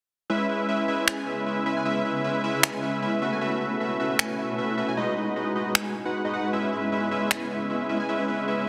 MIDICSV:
0, 0, Header, 1, 4, 480
1, 0, Start_track
1, 0, Key_signature, 4, "minor"
1, 0, Tempo, 389610
1, 366, Time_signature, 4, 2, 24, 8
1, 10704, End_track
2, 0, Start_track
2, 0, Title_t, "Analog polysynth"
2, 0, Program_c, 0, 90
2, 365, Note_on_c, 0, 56, 99
2, 365, Note_on_c, 0, 61, 87
2, 365, Note_on_c, 0, 64, 89
2, 365, Note_on_c, 0, 71, 88
2, 365, Note_on_c, 0, 76, 107
2, 573, Note_off_c, 0, 56, 0
2, 573, Note_off_c, 0, 61, 0
2, 573, Note_off_c, 0, 64, 0
2, 573, Note_off_c, 0, 71, 0
2, 573, Note_off_c, 0, 76, 0
2, 605, Note_on_c, 0, 56, 75
2, 605, Note_on_c, 0, 61, 69
2, 605, Note_on_c, 0, 64, 69
2, 605, Note_on_c, 0, 71, 69
2, 605, Note_on_c, 0, 76, 81
2, 819, Note_off_c, 0, 56, 0
2, 819, Note_off_c, 0, 61, 0
2, 819, Note_off_c, 0, 64, 0
2, 819, Note_off_c, 0, 71, 0
2, 819, Note_off_c, 0, 76, 0
2, 845, Note_on_c, 0, 56, 80
2, 845, Note_on_c, 0, 61, 78
2, 845, Note_on_c, 0, 64, 78
2, 845, Note_on_c, 0, 71, 77
2, 845, Note_on_c, 0, 76, 91
2, 1059, Note_off_c, 0, 56, 0
2, 1059, Note_off_c, 0, 61, 0
2, 1059, Note_off_c, 0, 64, 0
2, 1059, Note_off_c, 0, 71, 0
2, 1059, Note_off_c, 0, 76, 0
2, 1084, Note_on_c, 0, 56, 86
2, 1084, Note_on_c, 0, 61, 80
2, 1084, Note_on_c, 0, 64, 83
2, 1084, Note_on_c, 0, 71, 82
2, 1084, Note_on_c, 0, 76, 99
2, 1299, Note_off_c, 0, 56, 0
2, 1299, Note_off_c, 0, 61, 0
2, 1299, Note_off_c, 0, 64, 0
2, 1299, Note_off_c, 0, 71, 0
2, 1299, Note_off_c, 0, 76, 0
2, 1322, Note_on_c, 0, 56, 84
2, 1322, Note_on_c, 0, 64, 80
2, 1322, Note_on_c, 0, 71, 77
2, 1322, Note_on_c, 0, 80, 93
2, 1538, Note_off_c, 0, 56, 0
2, 1538, Note_off_c, 0, 64, 0
2, 1538, Note_off_c, 0, 71, 0
2, 1538, Note_off_c, 0, 80, 0
2, 1562, Note_on_c, 0, 56, 73
2, 1562, Note_on_c, 0, 61, 68
2, 1562, Note_on_c, 0, 64, 66
2, 1562, Note_on_c, 0, 71, 66
2, 1563, Note_on_c, 0, 76, 84
2, 1778, Note_off_c, 0, 56, 0
2, 1778, Note_off_c, 0, 61, 0
2, 1778, Note_off_c, 0, 64, 0
2, 1778, Note_off_c, 0, 71, 0
2, 1778, Note_off_c, 0, 76, 0
2, 1802, Note_on_c, 0, 56, 83
2, 1802, Note_on_c, 0, 64, 74
2, 1802, Note_on_c, 0, 76, 89
2, 1803, Note_on_c, 0, 61, 74
2, 1803, Note_on_c, 0, 71, 73
2, 2018, Note_off_c, 0, 56, 0
2, 2018, Note_off_c, 0, 61, 0
2, 2018, Note_off_c, 0, 64, 0
2, 2018, Note_off_c, 0, 71, 0
2, 2018, Note_off_c, 0, 76, 0
2, 2043, Note_on_c, 0, 61, 84
2, 2044, Note_on_c, 0, 56, 92
2, 2044, Note_on_c, 0, 64, 83
2, 2044, Note_on_c, 0, 71, 85
2, 2044, Note_on_c, 0, 76, 101
2, 2156, Note_off_c, 0, 56, 0
2, 2156, Note_off_c, 0, 61, 0
2, 2156, Note_off_c, 0, 64, 0
2, 2156, Note_off_c, 0, 71, 0
2, 2156, Note_off_c, 0, 76, 0
2, 2175, Note_on_c, 0, 56, 81
2, 2175, Note_on_c, 0, 61, 76
2, 2175, Note_on_c, 0, 64, 76
2, 2175, Note_on_c, 0, 80, 92
2, 2176, Note_on_c, 0, 71, 75
2, 2259, Note_off_c, 0, 56, 0
2, 2259, Note_off_c, 0, 61, 0
2, 2259, Note_off_c, 0, 64, 0
2, 2259, Note_off_c, 0, 71, 0
2, 2259, Note_off_c, 0, 80, 0
2, 2282, Note_on_c, 0, 56, 99
2, 2282, Note_on_c, 0, 71, 87
2, 2283, Note_on_c, 0, 61, 90
2, 2283, Note_on_c, 0, 64, 87
2, 2283, Note_on_c, 0, 76, 109
2, 2491, Note_off_c, 0, 56, 0
2, 2491, Note_off_c, 0, 61, 0
2, 2491, Note_off_c, 0, 64, 0
2, 2491, Note_off_c, 0, 71, 0
2, 2491, Note_off_c, 0, 76, 0
2, 2523, Note_on_c, 0, 56, 74
2, 2523, Note_on_c, 0, 71, 68
2, 2523, Note_on_c, 0, 76, 83
2, 2524, Note_on_c, 0, 61, 70
2, 2524, Note_on_c, 0, 64, 69
2, 2738, Note_off_c, 0, 56, 0
2, 2738, Note_off_c, 0, 61, 0
2, 2738, Note_off_c, 0, 71, 0
2, 2738, Note_off_c, 0, 76, 0
2, 2739, Note_off_c, 0, 64, 0
2, 2762, Note_on_c, 0, 56, 82
2, 2762, Note_on_c, 0, 76, 91
2, 2763, Note_on_c, 0, 61, 74
2, 2763, Note_on_c, 0, 64, 77
2, 2763, Note_on_c, 0, 71, 76
2, 2978, Note_off_c, 0, 56, 0
2, 2978, Note_off_c, 0, 61, 0
2, 2978, Note_off_c, 0, 64, 0
2, 2978, Note_off_c, 0, 71, 0
2, 2978, Note_off_c, 0, 76, 0
2, 3003, Note_on_c, 0, 56, 91
2, 3003, Note_on_c, 0, 61, 83
2, 3003, Note_on_c, 0, 64, 81
2, 3003, Note_on_c, 0, 71, 83
2, 3003, Note_on_c, 0, 76, 100
2, 3218, Note_off_c, 0, 56, 0
2, 3218, Note_off_c, 0, 61, 0
2, 3218, Note_off_c, 0, 64, 0
2, 3218, Note_off_c, 0, 71, 0
2, 3218, Note_off_c, 0, 76, 0
2, 3242, Note_on_c, 0, 64, 79
2, 3243, Note_on_c, 0, 56, 86
2, 3243, Note_on_c, 0, 61, 78
2, 3243, Note_on_c, 0, 71, 80
2, 3243, Note_on_c, 0, 80, 93
2, 3458, Note_off_c, 0, 56, 0
2, 3458, Note_off_c, 0, 61, 0
2, 3458, Note_off_c, 0, 64, 0
2, 3458, Note_off_c, 0, 71, 0
2, 3458, Note_off_c, 0, 80, 0
2, 3483, Note_on_c, 0, 56, 73
2, 3483, Note_on_c, 0, 61, 69
2, 3483, Note_on_c, 0, 64, 68
2, 3483, Note_on_c, 0, 71, 65
2, 3483, Note_on_c, 0, 76, 83
2, 3698, Note_off_c, 0, 56, 0
2, 3698, Note_off_c, 0, 61, 0
2, 3698, Note_off_c, 0, 64, 0
2, 3698, Note_off_c, 0, 71, 0
2, 3698, Note_off_c, 0, 76, 0
2, 3724, Note_on_c, 0, 56, 82
2, 3724, Note_on_c, 0, 61, 72
2, 3724, Note_on_c, 0, 64, 76
2, 3724, Note_on_c, 0, 71, 76
2, 3724, Note_on_c, 0, 76, 90
2, 3938, Note_off_c, 0, 61, 0
2, 3939, Note_off_c, 0, 56, 0
2, 3939, Note_off_c, 0, 64, 0
2, 3939, Note_off_c, 0, 71, 0
2, 3939, Note_off_c, 0, 76, 0
2, 3963, Note_on_c, 0, 61, 82
2, 3963, Note_on_c, 0, 66, 83
2, 3963, Note_on_c, 0, 76, 102
2, 3964, Note_on_c, 0, 57, 94
2, 3964, Note_on_c, 0, 71, 82
2, 4076, Note_off_c, 0, 57, 0
2, 4076, Note_off_c, 0, 61, 0
2, 4076, Note_off_c, 0, 66, 0
2, 4076, Note_off_c, 0, 71, 0
2, 4076, Note_off_c, 0, 76, 0
2, 4094, Note_on_c, 0, 66, 75
2, 4095, Note_on_c, 0, 57, 84
2, 4095, Note_on_c, 0, 61, 73
2, 4095, Note_on_c, 0, 71, 72
2, 4095, Note_on_c, 0, 80, 92
2, 4178, Note_off_c, 0, 66, 0
2, 4179, Note_off_c, 0, 57, 0
2, 4179, Note_off_c, 0, 61, 0
2, 4179, Note_off_c, 0, 71, 0
2, 4179, Note_off_c, 0, 80, 0
2, 4203, Note_on_c, 0, 57, 96
2, 4203, Note_on_c, 0, 61, 91
2, 4203, Note_on_c, 0, 66, 87
2, 4203, Note_on_c, 0, 71, 87
2, 4203, Note_on_c, 0, 76, 108
2, 4412, Note_off_c, 0, 57, 0
2, 4412, Note_off_c, 0, 61, 0
2, 4412, Note_off_c, 0, 66, 0
2, 4412, Note_off_c, 0, 71, 0
2, 4412, Note_off_c, 0, 76, 0
2, 4444, Note_on_c, 0, 66, 69
2, 4444, Note_on_c, 0, 71, 70
2, 4444, Note_on_c, 0, 76, 83
2, 4445, Note_on_c, 0, 57, 74
2, 4445, Note_on_c, 0, 61, 68
2, 4658, Note_off_c, 0, 71, 0
2, 4659, Note_off_c, 0, 57, 0
2, 4659, Note_off_c, 0, 61, 0
2, 4659, Note_off_c, 0, 66, 0
2, 4659, Note_off_c, 0, 76, 0
2, 4684, Note_on_c, 0, 61, 76
2, 4684, Note_on_c, 0, 71, 76
2, 4685, Note_on_c, 0, 57, 85
2, 4685, Note_on_c, 0, 66, 75
2, 4685, Note_on_c, 0, 76, 94
2, 4899, Note_off_c, 0, 57, 0
2, 4899, Note_off_c, 0, 61, 0
2, 4899, Note_off_c, 0, 66, 0
2, 4899, Note_off_c, 0, 71, 0
2, 4899, Note_off_c, 0, 76, 0
2, 4924, Note_on_c, 0, 57, 92
2, 4924, Note_on_c, 0, 61, 79
2, 4924, Note_on_c, 0, 66, 84
2, 4924, Note_on_c, 0, 71, 85
2, 4924, Note_on_c, 0, 76, 99
2, 5139, Note_off_c, 0, 57, 0
2, 5139, Note_off_c, 0, 61, 0
2, 5139, Note_off_c, 0, 66, 0
2, 5139, Note_off_c, 0, 71, 0
2, 5139, Note_off_c, 0, 76, 0
2, 5163, Note_on_c, 0, 57, 90
2, 5163, Note_on_c, 0, 61, 82
2, 5164, Note_on_c, 0, 66, 79
2, 5164, Note_on_c, 0, 71, 80
2, 5164, Note_on_c, 0, 80, 96
2, 5378, Note_off_c, 0, 57, 0
2, 5378, Note_off_c, 0, 61, 0
2, 5379, Note_off_c, 0, 66, 0
2, 5379, Note_off_c, 0, 71, 0
2, 5379, Note_off_c, 0, 80, 0
2, 5403, Note_on_c, 0, 71, 68
2, 5403, Note_on_c, 0, 76, 80
2, 5404, Note_on_c, 0, 57, 73
2, 5404, Note_on_c, 0, 61, 69
2, 5404, Note_on_c, 0, 66, 68
2, 5618, Note_off_c, 0, 71, 0
2, 5618, Note_off_c, 0, 76, 0
2, 5619, Note_off_c, 0, 57, 0
2, 5619, Note_off_c, 0, 61, 0
2, 5619, Note_off_c, 0, 66, 0
2, 5644, Note_on_c, 0, 76, 91
2, 5645, Note_on_c, 0, 57, 82
2, 5645, Note_on_c, 0, 61, 76
2, 5645, Note_on_c, 0, 66, 75
2, 5645, Note_on_c, 0, 71, 75
2, 5859, Note_off_c, 0, 57, 0
2, 5859, Note_off_c, 0, 61, 0
2, 5859, Note_off_c, 0, 66, 0
2, 5859, Note_off_c, 0, 71, 0
2, 5859, Note_off_c, 0, 76, 0
2, 5883, Note_on_c, 0, 66, 84
2, 5883, Note_on_c, 0, 71, 84
2, 5884, Note_on_c, 0, 57, 90
2, 5884, Note_on_c, 0, 61, 83
2, 5884, Note_on_c, 0, 76, 101
2, 5996, Note_off_c, 0, 57, 0
2, 5996, Note_off_c, 0, 61, 0
2, 5996, Note_off_c, 0, 66, 0
2, 5996, Note_off_c, 0, 71, 0
2, 5996, Note_off_c, 0, 76, 0
2, 6015, Note_on_c, 0, 57, 80
2, 6015, Note_on_c, 0, 61, 76
2, 6015, Note_on_c, 0, 66, 75
2, 6015, Note_on_c, 0, 71, 75
2, 6015, Note_on_c, 0, 80, 90
2, 6099, Note_off_c, 0, 57, 0
2, 6099, Note_off_c, 0, 61, 0
2, 6099, Note_off_c, 0, 66, 0
2, 6099, Note_off_c, 0, 71, 0
2, 6099, Note_off_c, 0, 80, 0
2, 6124, Note_on_c, 0, 63, 91
2, 6124, Note_on_c, 0, 75, 106
2, 6125, Note_on_c, 0, 56, 93
2, 6125, Note_on_c, 0, 66, 89
2, 6125, Note_on_c, 0, 71, 90
2, 6332, Note_off_c, 0, 63, 0
2, 6332, Note_off_c, 0, 66, 0
2, 6332, Note_off_c, 0, 71, 0
2, 6332, Note_off_c, 0, 75, 0
2, 6333, Note_off_c, 0, 56, 0
2, 6364, Note_on_c, 0, 56, 73
2, 6364, Note_on_c, 0, 66, 67
2, 6365, Note_on_c, 0, 63, 69
2, 6365, Note_on_c, 0, 71, 71
2, 6365, Note_on_c, 0, 75, 85
2, 6579, Note_off_c, 0, 56, 0
2, 6579, Note_off_c, 0, 63, 0
2, 6579, Note_off_c, 0, 66, 0
2, 6579, Note_off_c, 0, 71, 0
2, 6579, Note_off_c, 0, 75, 0
2, 6603, Note_on_c, 0, 75, 92
2, 6604, Note_on_c, 0, 56, 82
2, 6604, Note_on_c, 0, 63, 78
2, 6604, Note_on_c, 0, 66, 75
2, 6604, Note_on_c, 0, 71, 76
2, 6818, Note_off_c, 0, 75, 0
2, 6819, Note_off_c, 0, 56, 0
2, 6819, Note_off_c, 0, 63, 0
2, 6819, Note_off_c, 0, 66, 0
2, 6819, Note_off_c, 0, 71, 0
2, 6844, Note_on_c, 0, 56, 91
2, 6844, Note_on_c, 0, 63, 83
2, 6844, Note_on_c, 0, 66, 84
2, 6844, Note_on_c, 0, 71, 81
2, 6844, Note_on_c, 0, 75, 99
2, 7059, Note_off_c, 0, 56, 0
2, 7059, Note_off_c, 0, 63, 0
2, 7059, Note_off_c, 0, 66, 0
2, 7059, Note_off_c, 0, 71, 0
2, 7059, Note_off_c, 0, 75, 0
2, 7085, Note_on_c, 0, 56, 85
2, 7085, Note_on_c, 0, 63, 79
2, 7085, Note_on_c, 0, 80, 96
2, 7299, Note_off_c, 0, 56, 0
2, 7299, Note_off_c, 0, 63, 0
2, 7299, Note_off_c, 0, 80, 0
2, 7456, Note_on_c, 0, 63, 78
2, 7457, Note_on_c, 0, 56, 83
2, 7457, Note_on_c, 0, 66, 78
2, 7457, Note_on_c, 0, 71, 77
2, 7457, Note_on_c, 0, 78, 94
2, 7657, Note_off_c, 0, 63, 0
2, 7657, Note_off_c, 0, 78, 0
2, 7658, Note_off_c, 0, 56, 0
2, 7658, Note_off_c, 0, 66, 0
2, 7658, Note_off_c, 0, 71, 0
2, 7694, Note_on_c, 0, 66, 85
2, 7695, Note_on_c, 0, 56, 94
2, 7695, Note_on_c, 0, 63, 90
2, 7695, Note_on_c, 0, 71, 88
2, 7695, Note_on_c, 0, 75, 102
2, 7778, Note_off_c, 0, 66, 0
2, 7779, Note_off_c, 0, 56, 0
2, 7779, Note_off_c, 0, 63, 0
2, 7779, Note_off_c, 0, 71, 0
2, 7779, Note_off_c, 0, 75, 0
2, 7804, Note_on_c, 0, 56, 88
2, 7804, Note_on_c, 0, 63, 78
2, 7804, Note_on_c, 0, 66, 82
2, 7804, Note_on_c, 0, 71, 82
2, 7804, Note_on_c, 0, 78, 97
2, 8019, Note_off_c, 0, 56, 0
2, 8019, Note_off_c, 0, 63, 0
2, 8019, Note_off_c, 0, 66, 0
2, 8019, Note_off_c, 0, 71, 0
2, 8019, Note_off_c, 0, 78, 0
2, 8043, Note_on_c, 0, 56, 99
2, 8043, Note_on_c, 0, 64, 87
2, 8044, Note_on_c, 0, 61, 86
2, 8044, Note_on_c, 0, 71, 89
2, 8044, Note_on_c, 0, 76, 105
2, 8252, Note_off_c, 0, 56, 0
2, 8252, Note_off_c, 0, 61, 0
2, 8252, Note_off_c, 0, 64, 0
2, 8252, Note_off_c, 0, 71, 0
2, 8252, Note_off_c, 0, 76, 0
2, 8283, Note_on_c, 0, 61, 67
2, 8283, Note_on_c, 0, 76, 83
2, 8284, Note_on_c, 0, 56, 74
2, 8284, Note_on_c, 0, 64, 69
2, 8284, Note_on_c, 0, 71, 67
2, 8498, Note_off_c, 0, 61, 0
2, 8498, Note_off_c, 0, 76, 0
2, 8499, Note_off_c, 0, 56, 0
2, 8499, Note_off_c, 0, 64, 0
2, 8499, Note_off_c, 0, 71, 0
2, 8524, Note_on_c, 0, 56, 83
2, 8524, Note_on_c, 0, 61, 76
2, 8524, Note_on_c, 0, 64, 76
2, 8524, Note_on_c, 0, 71, 78
2, 8525, Note_on_c, 0, 76, 92
2, 8739, Note_off_c, 0, 56, 0
2, 8739, Note_off_c, 0, 61, 0
2, 8739, Note_off_c, 0, 64, 0
2, 8739, Note_off_c, 0, 71, 0
2, 8739, Note_off_c, 0, 76, 0
2, 8762, Note_on_c, 0, 56, 93
2, 8763, Note_on_c, 0, 61, 85
2, 8763, Note_on_c, 0, 64, 81
2, 8763, Note_on_c, 0, 71, 82
2, 8763, Note_on_c, 0, 76, 101
2, 8978, Note_off_c, 0, 56, 0
2, 8978, Note_off_c, 0, 61, 0
2, 8978, Note_off_c, 0, 64, 0
2, 8978, Note_off_c, 0, 71, 0
2, 8978, Note_off_c, 0, 76, 0
2, 9003, Note_on_c, 0, 64, 80
2, 9003, Note_on_c, 0, 80, 95
2, 9218, Note_off_c, 0, 64, 0
2, 9218, Note_off_c, 0, 80, 0
2, 9243, Note_on_c, 0, 71, 69
2, 9244, Note_on_c, 0, 56, 72
2, 9244, Note_on_c, 0, 61, 66
2, 9244, Note_on_c, 0, 64, 69
2, 9244, Note_on_c, 0, 76, 84
2, 9458, Note_off_c, 0, 71, 0
2, 9459, Note_off_c, 0, 56, 0
2, 9459, Note_off_c, 0, 61, 0
2, 9459, Note_off_c, 0, 64, 0
2, 9459, Note_off_c, 0, 76, 0
2, 9483, Note_on_c, 0, 56, 79
2, 9483, Note_on_c, 0, 61, 75
2, 9483, Note_on_c, 0, 71, 75
2, 9484, Note_on_c, 0, 64, 73
2, 9484, Note_on_c, 0, 76, 88
2, 9698, Note_off_c, 0, 56, 0
2, 9698, Note_off_c, 0, 61, 0
2, 9698, Note_off_c, 0, 71, 0
2, 9699, Note_off_c, 0, 64, 0
2, 9699, Note_off_c, 0, 76, 0
2, 9723, Note_on_c, 0, 56, 91
2, 9723, Note_on_c, 0, 64, 84
2, 9723, Note_on_c, 0, 71, 83
2, 9723, Note_on_c, 0, 76, 100
2, 9724, Note_on_c, 0, 61, 82
2, 9836, Note_off_c, 0, 56, 0
2, 9836, Note_off_c, 0, 61, 0
2, 9836, Note_off_c, 0, 64, 0
2, 9836, Note_off_c, 0, 71, 0
2, 9836, Note_off_c, 0, 76, 0
2, 9853, Note_on_c, 0, 71, 74
2, 9854, Note_on_c, 0, 56, 81
2, 9854, Note_on_c, 0, 61, 76
2, 9854, Note_on_c, 0, 64, 74
2, 9854, Note_on_c, 0, 80, 89
2, 9938, Note_off_c, 0, 56, 0
2, 9938, Note_off_c, 0, 61, 0
2, 9938, Note_off_c, 0, 64, 0
2, 9938, Note_off_c, 0, 71, 0
2, 9938, Note_off_c, 0, 80, 0
2, 9963, Note_on_c, 0, 76, 105
2, 9964, Note_on_c, 0, 56, 98
2, 9964, Note_on_c, 0, 61, 90
2, 9964, Note_on_c, 0, 64, 85
2, 9964, Note_on_c, 0, 71, 88
2, 10172, Note_off_c, 0, 56, 0
2, 10172, Note_off_c, 0, 61, 0
2, 10172, Note_off_c, 0, 64, 0
2, 10172, Note_off_c, 0, 71, 0
2, 10172, Note_off_c, 0, 76, 0
2, 10203, Note_on_c, 0, 64, 68
2, 10203, Note_on_c, 0, 71, 68
2, 10204, Note_on_c, 0, 56, 75
2, 10204, Note_on_c, 0, 61, 70
2, 10204, Note_on_c, 0, 76, 82
2, 10418, Note_off_c, 0, 64, 0
2, 10418, Note_off_c, 0, 71, 0
2, 10419, Note_off_c, 0, 56, 0
2, 10419, Note_off_c, 0, 61, 0
2, 10419, Note_off_c, 0, 76, 0
2, 10444, Note_on_c, 0, 56, 82
2, 10444, Note_on_c, 0, 61, 77
2, 10444, Note_on_c, 0, 64, 74
2, 10444, Note_on_c, 0, 71, 76
2, 10444, Note_on_c, 0, 76, 93
2, 10658, Note_off_c, 0, 61, 0
2, 10659, Note_off_c, 0, 56, 0
2, 10659, Note_off_c, 0, 64, 0
2, 10659, Note_off_c, 0, 71, 0
2, 10659, Note_off_c, 0, 76, 0
2, 10704, End_track
3, 0, Start_track
3, 0, Title_t, "Ambient pad"
3, 0, Program_c, 1, 92
3, 366, Note_on_c, 1, 49, 83
3, 366, Note_on_c, 1, 59, 78
3, 367, Note_on_c, 1, 56, 76
3, 368, Note_on_c, 1, 64, 92
3, 3930, Note_off_c, 1, 49, 0
3, 3930, Note_off_c, 1, 56, 0
3, 3930, Note_off_c, 1, 59, 0
3, 3931, Note_off_c, 1, 64, 0
3, 3964, Note_on_c, 1, 47, 86
3, 3965, Note_on_c, 1, 61, 79
3, 3965, Note_on_c, 1, 64, 94
3, 3966, Note_on_c, 1, 57, 77
3, 6103, Note_off_c, 1, 47, 0
3, 6104, Note_off_c, 1, 57, 0
3, 6104, Note_off_c, 1, 61, 0
3, 6104, Note_off_c, 1, 64, 0
3, 6125, Note_on_c, 1, 59, 77
3, 6125, Note_on_c, 1, 66, 91
3, 6126, Note_on_c, 1, 44, 87
3, 6126, Note_on_c, 1, 56, 79
3, 8026, Note_off_c, 1, 44, 0
3, 8026, Note_off_c, 1, 66, 0
3, 8045, Note_on_c, 1, 49, 85
3, 8046, Note_on_c, 1, 64, 95
3, 10704, Note_off_c, 1, 49, 0
3, 10704, Note_off_c, 1, 56, 0
3, 10704, Note_off_c, 1, 59, 0
3, 10704, Note_off_c, 1, 64, 0
3, 10704, End_track
4, 0, Start_track
4, 0, Title_t, "Drums"
4, 1326, Note_on_c, 9, 26, 89
4, 1449, Note_off_c, 9, 26, 0
4, 3245, Note_on_c, 9, 26, 90
4, 3368, Note_off_c, 9, 26, 0
4, 5165, Note_on_c, 9, 26, 90
4, 5288, Note_off_c, 9, 26, 0
4, 7085, Note_on_c, 9, 26, 85
4, 7208, Note_off_c, 9, 26, 0
4, 9005, Note_on_c, 9, 26, 84
4, 9128, Note_off_c, 9, 26, 0
4, 10704, End_track
0, 0, End_of_file